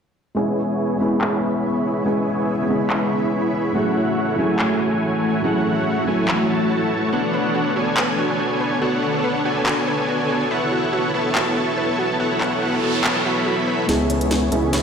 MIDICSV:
0, 0, Header, 1, 9, 480
1, 0, Start_track
1, 0, Tempo, 422535
1, 416, Time_signature, 4, 2, 24, 8
1, 16841, End_track
2, 0, Start_track
2, 0, Title_t, "Supersaw synth"
2, 0, Program_c, 0, 81
2, 413, Note_on_c, 0, 73, 80
2, 414, Note_on_c, 0, 59, 92
2, 414, Note_on_c, 0, 64, 81
2, 414, Note_on_c, 0, 68, 82
2, 414, Note_on_c, 0, 80, 100
2, 1108, Note_off_c, 0, 73, 0
2, 1109, Note_off_c, 0, 59, 0
2, 1109, Note_off_c, 0, 64, 0
2, 1109, Note_off_c, 0, 68, 0
2, 1109, Note_off_c, 0, 80, 0
2, 1136, Note_on_c, 0, 64, 76
2, 1136, Note_on_c, 0, 68, 75
2, 1136, Note_on_c, 0, 83, 91
2, 1137, Note_on_c, 0, 59, 78
2, 1137, Note_on_c, 0, 73, 75
2, 2310, Note_off_c, 0, 59, 0
2, 2310, Note_off_c, 0, 64, 0
2, 2310, Note_off_c, 0, 68, 0
2, 2310, Note_off_c, 0, 73, 0
2, 2310, Note_off_c, 0, 83, 0
2, 2336, Note_on_c, 0, 59, 89
2, 2336, Note_on_c, 0, 68, 81
2, 2336, Note_on_c, 0, 73, 83
2, 2337, Note_on_c, 0, 64, 79
2, 2337, Note_on_c, 0, 80, 99
2, 3030, Note_off_c, 0, 59, 0
2, 3030, Note_off_c, 0, 64, 0
2, 3030, Note_off_c, 0, 68, 0
2, 3030, Note_off_c, 0, 73, 0
2, 3030, Note_off_c, 0, 80, 0
2, 3056, Note_on_c, 0, 59, 80
2, 3057, Note_on_c, 0, 64, 74
2, 3057, Note_on_c, 0, 68, 73
2, 3057, Note_on_c, 0, 73, 74
2, 3057, Note_on_c, 0, 83, 89
2, 4230, Note_off_c, 0, 59, 0
2, 4230, Note_off_c, 0, 64, 0
2, 4230, Note_off_c, 0, 68, 0
2, 4230, Note_off_c, 0, 73, 0
2, 4230, Note_off_c, 0, 83, 0
2, 4255, Note_on_c, 0, 57, 90
2, 4255, Note_on_c, 0, 78, 96
2, 4256, Note_on_c, 0, 64, 82
2, 4256, Note_on_c, 0, 66, 81
2, 4256, Note_on_c, 0, 73, 84
2, 4949, Note_off_c, 0, 57, 0
2, 4949, Note_off_c, 0, 78, 0
2, 4950, Note_off_c, 0, 64, 0
2, 4950, Note_off_c, 0, 66, 0
2, 4950, Note_off_c, 0, 73, 0
2, 4974, Note_on_c, 0, 66, 76
2, 4974, Note_on_c, 0, 80, 92
2, 4975, Note_on_c, 0, 57, 81
2, 4975, Note_on_c, 0, 64, 75
2, 4975, Note_on_c, 0, 73, 74
2, 6149, Note_off_c, 0, 57, 0
2, 6149, Note_off_c, 0, 64, 0
2, 6149, Note_off_c, 0, 66, 0
2, 6149, Note_off_c, 0, 73, 0
2, 6149, Note_off_c, 0, 80, 0
2, 6176, Note_on_c, 0, 57, 91
2, 6176, Note_on_c, 0, 64, 81
2, 6176, Note_on_c, 0, 66, 83
2, 6176, Note_on_c, 0, 73, 84
2, 6176, Note_on_c, 0, 78, 101
2, 6870, Note_off_c, 0, 57, 0
2, 6870, Note_off_c, 0, 64, 0
2, 6870, Note_off_c, 0, 66, 0
2, 6870, Note_off_c, 0, 73, 0
2, 6870, Note_off_c, 0, 78, 0
2, 6896, Note_on_c, 0, 57, 79
2, 6896, Note_on_c, 0, 64, 76
2, 6896, Note_on_c, 0, 66, 74
2, 6896, Note_on_c, 0, 73, 74
2, 6896, Note_on_c, 0, 80, 91
2, 7354, Note_off_c, 0, 57, 0
2, 7354, Note_off_c, 0, 64, 0
2, 7354, Note_off_c, 0, 66, 0
2, 7354, Note_off_c, 0, 73, 0
2, 7354, Note_off_c, 0, 80, 0
2, 7376, Note_on_c, 0, 57, 82
2, 7376, Note_on_c, 0, 64, 77
2, 7376, Note_on_c, 0, 66, 76
2, 7376, Note_on_c, 0, 73, 76
2, 7376, Note_on_c, 0, 81, 90
2, 8069, Note_off_c, 0, 64, 0
2, 8069, Note_off_c, 0, 73, 0
2, 8070, Note_off_c, 0, 57, 0
2, 8070, Note_off_c, 0, 66, 0
2, 8070, Note_off_c, 0, 81, 0
2, 8093, Note_on_c, 0, 59, 90
2, 8093, Note_on_c, 0, 62, 84
2, 8093, Note_on_c, 0, 73, 83
2, 8094, Note_on_c, 0, 69, 85
2, 8094, Note_on_c, 0, 78, 99
2, 8788, Note_off_c, 0, 59, 0
2, 8788, Note_off_c, 0, 62, 0
2, 8788, Note_off_c, 0, 73, 0
2, 8789, Note_off_c, 0, 69, 0
2, 8789, Note_off_c, 0, 78, 0
2, 8813, Note_on_c, 0, 59, 82
2, 8813, Note_on_c, 0, 62, 77
2, 8813, Note_on_c, 0, 69, 76
2, 8813, Note_on_c, 0, 73, 76
2, 8813, Note_on_c, 0, 80, 89
2, 9988, Note_off_c, 0, 59, 0
2, 9988, Note_off_c, 0, 62, 0
2, 9988, Note_off_c, 0, 69, 0
2, 9988, Note_off_c, 0, 73, 0
2, 9988, Note_off_c, 0, 80, 0
2, 10013, Note_on_c, 0, 59, 89
2, 10013, Note_on_c, 0, 69, 85
2, 10013, Note_on_c, 0, 78, 100
2, 10014, Note_on_c, 0, 62, 81
2, 10014, Note_on_c, 0, 73, 80
2, 10708, Note_off_c, 0, 59, 0
2, 10708, Note_off_c, 0, 69, 0
2, 10708, Note_off_c, 0, 73, 0
2, 10708, Note_off_c, 0, 78, 0
2, 10709, Note_off_c, 0, 62, 0
2, 10735, Note_on_c, 0, 59, 81
2, 10735, Note_on_c, 0, 62, 78
2, 10735, Note_on_c, 0, 69, 73
2, 10735, Note_on_c, 0, 73, 73
2, 10735, Note_on_c, 0, 80, 94
2, 11909, Note_off_c, 0, 59, 0
2, 11909, Note_off_c, 0, 62, 0
2, 11909, Note_off_c, 0, 69, 0
2, 11909, Note_off_c, 0, 73, 0
2, 11909, Note_off_c, 0, 80, 0
2, 11934, Note_on_c, 0, 59, 88
2, 11934, Note_on_c, 0, 64, 83
2, 11934, Note_on_c, 0, 69, 83
2, 11934, Note_on_c, 0, 73, 85
2, 11934, Note_on_c, 0, 78, 98
2, 12628, Note_off_c, 0, 73, 0
2, 12629, Note_off_c, 0, 59, 0
2, 12629, Note_off_c, 0, 64, 0
2, 12629, Note_off_c, 0, 69, 0
2, 12629, Note_off_c, 0, 78, 0
2, 12655, Note_on_c, 0, 69, 78
2, 12655, Note_on_c, 0, 81, 90
2, 12656, Note_on_c, 0, 59, 85
2, 12656, Note_on_c, 0, 64, 77
2, 12656, Note_on_c, 0, 73, 76
2, 13829, Note_off_c, 0, 69, 0
2, 13829, Note_off_c, 0, 73, 0
2, 13829, Note_off_c, 0, 81, 0
2, 13830, Note_off_c, 0, 59, 0
2, 13830, Note_off_c, 0, 64, 0
2, 13854, Note_on_c, 0, 78, 103
2, 13855, Note_on_c, 0, 59, 89
2, 13855, Note_on_c, 0, 64, 84
2, 13855, Note_on_c, 0, 69, 85
2, 13855, Note_on_c, 0, 73, 82
2, 14549, Note_off_c, 0, 59, 0
2, 14549, Note_off_c, 0, 64, 0
2, 14549, Note_off_c, 0, 69, 0
2, 14549, Note_off_c, 0, 73, 0
2, 14549, Note_off_c, 0, 78, 0
2, 14574, Note_on_c, 0, 59, 85
2, 14574, Note_on_c, 0, 64, 75
2, 14574, Note_on_c, 0, 69, 74
2, 14574, Note_on_c, 0, 73, 76
2, 14574, Note_on_c, 0, 81, 93
2, 15033, Note_off_c, 0, 59, 0
2, 15033, Note_off_c, 0, 64, 0
2, 15033, Note_off_c, 0, 69, 0
2, 15033, Note_off_c, 0, 73, 0
2, 15033, Note_off_c, 0, 81, 0
2, 15054, Note_on_c, 0, 64, 74
2, 15055, Note_on_c, 0, 59, 85
2, 15055, Note_on_c, 0, 69, 76
2, 15055, Note_on_c, 0, 73, 75
2, 15055, Note_on_c, 0, 83, 91
2, 15749, Note_off_c, 0, 59, 0
2, 15749, Note_off_c, 0, 64, 0
2, 15749, Note_off_c, 0, 69, 0
2, 15749, Note_off_c, 0, 73, 0
2, 15749, Note_off_c, 0, 83, 0
2, 15776, Note_on_c, 0, 59, 88
2, 15776, Note_on_c, 0, 64, 83
2, 15776, Note_on_c, 0, 68, 84
2, 16470, Note_off_c, 0, 59, 0
2, 16470, Note_off_c, 0, 64, 0
2, 16470, Note_off_c, 0, 68, 0
2, 16493, Note_on_c, 0, 59, 83
2, 16493, Note_on_c, 0, 64, 76
2, 16493, Note_on_c, 0, 68, 77
2, 16493, Note_on_c, 0, 73, 76
2, 16493, Note_on_c, 0, 83, 94
2, 16841, Note_off_c, 0, 59, 0
2, 16841, Note_off_c, 0, 64, 0
2, 16841, Note_off_c, 0, 68, 0
2, 16841, Note_off_c, 0, 73, 0
2, 16841, Note_off_c, 0, 83, 0
2, 16841, End_track
3, 0, Start_track
3, 0, Title_t, "Synth arpeggio sound"
3, 0, Program_c, 1, 84
3, 8096, Note_on_c, 1, 66, 79
3, 8129, Note_off_c, 1, 66, 0
3, 8335, Note_on_c, 1, 71, 75
3, 8391, Note_off_c, 1, 71, 0
3, 8575, Note_on_c, 1, 66, 77
3, 8658, Note_off_c, 1, 66, 0
3, 8815, Note_on_c, 1, 66, 70
3, 8849, Note_off_c, 1, 66, 0
3, 9055, Note_on_c, 1, 71, 80
3, 9111, Note_off_c, 1, 71, 0
3, 9296, Note_on_c, 1, 66, 73
3, 9379, Note_off_c, 1, 66, 0
3, 9536, Note_on_c, 1, 66, 80
3, 9569, Note_off_c, 1, 66, 0
3, 9774, Note_on_c, 1, 71, 76
3, 9830, Note_off_c, 1, 71, 0
3, 10015, Note_on_c, 1, 66, 80
3, 10098, Note_off_c, 1, 66, 0
3, 10255, Note_on_c, 1, 66, 76
3, 10289, Note_off_c, 1, 66, 0
3, 10495, Note_on_c, 1, 71, 78
3, 10550, Note_off_c, 1, 71, 0
3, 10736, Note_on_c, 1, 66, 71
3, 10819, Note_off_c, 1, 66, 0
3, 10975, Note_on_c, 1, 66, 77
3, 11009, Note_off_c, 1, 66, 0
3, 11216, Note_on_c, 1, 71, 77
3, 11271, Note_off_c, 1, 71, 0
3, 11455, Note_on_c, 1, 66, 80
3, 11538, Note_off_c, 1, 66, 0
3, 11696, Note_on_c, 1, 66, 77
3, 11729, Note_off_c, 1, 66, 0
3, 11936, Note_on_c, 1, 71, 81
3, 11991, Note_off_c, 1, 71, 0
3, 12177, Note_on_c, 1, 66, 76
3, 12259, Note_off_c, 1, 66, 0
3, 12416, Note_on_c, 1, 66, 80
3, 12449, Note_off_c, 1, 66, 0
3, 12656, Note_on_c, 1, 71, 69
3, 12712, Note_off_c, 1, 71, 0
3, 12896, Note_on_c, 1, 66, 81
3, 12979, Note_off_c, 1, 66, 0
3, 13135, Note_on_c, 1, 66, 74
3, 13169, Note_off_c, 1, 66, 0
3, 13375, Note_on_c, 1, 71, 77
3, 13431, Note_off_c, 1, 71, 0
3, 13617, Note_on_c, 1, 66, 79
3, 13699, Note_off_c, 1, 66, 0
3, 13857, Note_on_c, 1, 66, 79
3, 13890, Note_off_c, 1, 66, 0
3, 14097, Note_on_c, 1, 71, 75
3, 14152, Note_off_c, 1, 71, 0
3, 14336, Note_on_c, 1, 66, 80
3, 14419, Note_off_c, 1, 66, 0
3, 14576, Note_on_c, 1, 66, 72
3, 14609, Note_off_c, 1, 66, 0
3, 14816, Note_on_c, 1, 71, 78
3, 14871, Note_off_c, 1, 71, 0
3, 15057, Note_on_c, 1, 66, 74
3, 15139, Note_off_c, 1, 66, 0
3, 15296, Note_on_c, 1, 66, 76
3, 15329, Note_off_c, 1, 66, 0
3, 15536, Note_on_c, 1, 71, 73
3, 15591, Note_off_c, 1, 71, 0
3, 15776, Note_on_c, 1, 68, 81
3, 15809, Note_off_c, 1, 68, 0
3, 16015, Note_on_c, 1, 73, 74
3, 16071, Note_off_c, 1, 73, 0
3, 16256, Note_on_c, 1, 68, 80
3, 16339, Note_off_c, 1, 68, 0
3, 16496, Note_on_c, 1, 68, 72
3, 16529, Note_off_c, 1, 68, 0
3, 16735, Note_on_c, 1, 73, 79
3, 16791, Note_off_c, 1, 73, 0
3, 16841, End_track
4, 0, Start_track
4, 0, Title_t, "Ambient pad"
4, 0, Program_c, 2, 92
4, 417, Note_on_c, 2, 49, 84
4, 418, Note_on_c, 2, 59, 75
4, 418, Note_on_c, 2, 64, 89
4, 4218, Note_off_c, 2, 49, 0
4, 4219, Note_off_c, 2, 59, 0
4, 4219, Note_off_c, 2, 64, 0
4, 4256, Note_on_c, 2, 52, 86
4, 4256, Note_on_c, 2, 57, 77
4, 4256, Note_on_c, 2, 66, 96
4, 8058, Note_off_c, 2, 52, 0
4, 8058, Note_off_c, 2, 57, 0
4, 8058, Note_off_c, 2, 66, 0
4, 8096, Note_on_c, 2, 59, 76
4, 8096, Note_on_c, 2, 73, 76
4, 8097, Note_on_c, 2, 50, 81
4, 8098, Note_on_c, 2, 69, 91
4, 11898, Note_off_c, 2, 50, 0
4, 11934, Note_on_c, 2, 54, 83
4, 15731, Note_off_c, 2, 59, 0
4, 15731, Note_off_c, 2, 73, 0
4, 15732, Note_off_c, 2, 69, 0
4, 15737, Note_off_c, 2, 54, 0
4, 15777, Note_on_c, 2, 76, 77
4, 15777, Note_on_c, 2, 85, 96
4, 15779, Note_on_c, 2, 71, 85
4, 16841, Note_off_c, 2, 71, 0
4, 16841, Note_off_c, 2, 76, 0
4, 16841, Note_off_c, 2, 85, 0
4, 16841, End_track
5, 0, Start_track
5, 0, Title_t, "Felt piano"
5, 0, Program_c, 3, 0
5, 393, Note_on_c, 3, 56, 67
5, 405, Note_on_c, 3, 59, 66
5, 416, Note_on_c, 3, 61, 66
5, 428, Note_on_c, 3, 64, 62
5, 439, Note_on_c, 3, 68, 78
5, 632, Control_c, 3, 64, 127
5, 1096, Note_off_c, 3, 56, 0
5, 1104, Note_off_c, 3, 59, 0
5, 1110, Note_off_c, 3, 61, 0
5, 1113, Note_on_c, 3, 56, 71
5, 1116, Note_off_c, 3, 64, 0
5, 1121, Note_off_c, 3, 68, 0
5, 1124, Note_on_c, 3, 59, 65
5, 1135, Note_on_c, 3, 61, 66
5, 1146, Note_on_c, 3, 64, 66
5, 1157, Note_on_c, 3, 68, 75
5, 2297, Note_off_c, 3, 56, 0
5, 2303, Note_off_c, 3, 59, 0
5, 2309, Note_off_c, 3, 61, 0
5, 2314, Note_on_c, 3, 56, 71
5, 2315, Note_off_c, 3, 64, 0
5, 2320, Note_off_c, 3, 68, 0
5, 2325, Note_on_c, 3, 59, 65
5, 2337, Note_on_c, 3, 61, 65
5, 2349, Note_on_c, 3, 64, 62
5, 2360, Note_on_c, 3, 68, 82
5, 3017, Note_off_c, 3, 56, 0
5, 3024, Note_off_c, 3, 59, 0
5, 3030, Note_off_c, 3, 61, 0
5, 3034, Note_on_c, 3, 56, 73
5, 3036, Note_off_c, 3, 64, 0
5, 3041, Note_off_c, 3, 68, 0
5, 3046, Note_on_c, 3, 59, 65
5, 3057, Note_on_c, 3, 61, 67
5, 3068, Note_on_c, 3, 64, 64
5, 3079, Note_on_c, 3, 68, 82
5, 4219, Note_off_c, 3, 56, 0
5, 4225, Note_off_c, 3, 59, 0
5, 4230, Note_off_c, 3, 61, 0
5, 4234, Note_on_c, 3, 54, 71
5, 4236, Note_off_c, 3, 64, 0
5, 4241, Note_off_c, 3, 68, 0
5, 4246, Note_on_c, 3, 57, 66
5, 4257, Note_on_c, 3, 61, 67
5, 4269, Control_c, 3, 64, 0
5, 4269, Note_on_c, 3, 64, 64
5, 4281, Note_on_c, 3, 68, 78
5, 4477, Control_c, 3, 64, 127
5, 4936, Note_off_c, 3, 54, 0
5, 4945, Note_off_c, 3, 57, 0
5, 4950, Note_off_c, 3, 61, 0
5, 4953, Note_on_c, 3, 54, 74
5, 4956, Note_off_c, 3, 64, 0
5, 4962, Note_off_c, 3, 68, 0
5, 4964, Note_on_c, 3, 57, 69
5, 4976, Note_on_c, 3, 61, 66
5, 4987, Note_on_c, 3, 64, 66
5, 4999, Note_on_c, 3, 68, 78
5, 6137, Note_off_c, 3, 54, 0
5, 6144, Note_off_c, 3, 57, 0
5, 6150, Note_off_c, 3, 61, 0
5, 6154, Note_on_c, 3, 54, 71
5, 6155, Note_off_c, 3, 64, 0
5, 6161, Note_off_c, 3, 68, 0
5, 6165, Note_on_c, 3, 57, 66
5, 6177, Note_on_c, 3, 61, 65
5, 6188, Note_on_c, 3, 64, 65
5, 6199, Note_on_c, 3, 68, 80
5, 6857, Note_off_c, 3, 54, 0
5, 6864, Note_off_c, 3, 57, 0
5, 6870, Note_off_c, 3, 61, 0
5, 6874, Note_on_c, 3, 54, 72
5, 6876, Note_off_c, 3, 64, 0
5, 6881, Note_off_c, 3, 68, 0
5, 6886, Note_on_c, 3, 57, 63
5, 6897, Note_on_c, 3, 61, 68
5, 6908, Note_on_c, 3, 64, 67
5, 8059, Note_off_c, 3, 54, 0
5, 8064, Note_off_c, 3, 57, 0
5, 8070, Note_off_c, 3, 61, 0
5, 8076, Note_off_c, 3, 64, 0
5, 8111, Control_c, 3, 64, 0
5, 15751, Note_on_c, 3, 56, 71
5, 15762, Note_on_c, 3, 59, 69
5, 15773, Note_on_c, 3, 61, 67
5, 15785, Note_on_c, 3, 64, 66
5, 15796, Note_on_c, 3, 68, 81
5, 16004, Control_c, 3, 64, 127
5, 16454, Note_off_c, 3, 56, 0
5, 16463, Note_off_c, 3, 59, 0
5, 16468, Note_off_c, 3, 61, 0
5, 16471, Note_on_c, 3, 56, 75
5, 16474, Note_off_c, 3, 64, 0
5, 16480, Note_off_c, 3, 68, 0
5, 16482, Note_on_c, 3, 59, 67
5, 16495, Note_on_c, 3, 61, 69
5, 16505, Note_on_c, 3, 64, 69
5, 16516, Note_on_c, 3, 68, 79
5, 16841, Note_off_c, 3, 56, 0
5, 16841, Note_off_c, 3, 59, 0
5, 16841, Note_off_c, 3, 61, 0
5, 16841, Note_off_c, 3, 64, 0
5, 16841, Note_off_c, 3, 68, 0
5, 16841, End_track
6, 0, Start_track
6, 0, Title_t, "Detuned saw bass"
6, 0, Program_c, 4, 39
6, 15776, Note_on_c, 4, 37, 92
6, 16474, Note_off_c, 4, 37, 0
6, 16496, Note_on_c, 4, 37, 95
6, 16841, Note_off_c, 4, 37, 0
6, 16841, End_track
7, 0, Start_track
7, 0, Title_t, "Noise sweep"
7, 0, Program_c, 5, 103
7, 13857, Note_on_c, 5, 60, 74
7, 15777, Note_off_c, 5, 60, 0
7, 16841, End_track
8, 0, Start_track
8, 0, Title_t, "Riser"
8, 0, Program_c, 6, 103
8, 15776, Note_on_c, 6, 60, 78
8, 16841, Note_off_c, 6, 60, 0
8, 16841, End_track
9, 0, Start_track
9, 0, Title_t, "Drums"
9, 1376, Note_on_c, 9, 39, 96
9, 1490, Note_off_c, 9, 39, 0
9, 3295, Note_on_c, 9, 39, 93
9, 3409, Note_off_c, 9, 39, 0
9, 5215, Note_on_c, 9, 39, 93
9, 5329, Note_off_c, 9, 39, 0
9, 7135, Note_on_c, 9, 39, 87
9, 7249, Note_off_c, 9, 39, 0
9, 9053, Note_on_c, 9, 39, 115
9, 9167, Note_off_c, 9, 39, 0
9, 10975, Note_on_c, 9, 39, 111
9, 11088, Note_off_c, 9, 39, 0
9, 12896, Note_on_c, 9, 39, 107
9, 13009, Note_off_c, 9, 39, 0
9, 14095, Note_on_c, 9, 39, 54
9, 14209, Note_off_c, 9, 39, 0
9, 14815, Note_on_c, 9, 39, 114
9, 14929, Note_off_c, 9, 39, 0
9, 15776, Note_on_c, 9, 38, 45
9, 15776, Note_on_c, 9, 42, 78
9, 15890, Note_off_c, 9, 38, 0
9, 15890, Note_off_c, 9, 42, 0
9, 16015, Note_on_c, 9, 42, 67
9, 16129, Note_off_c, 9, 42, 0
9, 16144, Note_on_c, 9, 42, 64
9, 16255, Note_off_c, 9, 42, 0
9, 16255, Note_on_c, 9, 38, 48
9, 16255, Note_on_c, 9, 42, 76
9, 16369, Note_off_c, 9, 38, 0
9, 16369, Note_off_c, 9, 42, 0
9, 16494, Note_on_c, 9, 42, 61
9, 16608, Note_off_c, 9, 42, 0
9, 16734, Note_on_c, 9, 38, 51
9, 16734, Note_on_c, 9, 42, 85
9, 16841, Note_off_c, 9, 38, 0
9, 16841, Note_off_c, 9, 42, 0
9, 16841, End_track
0, 0, End_of_file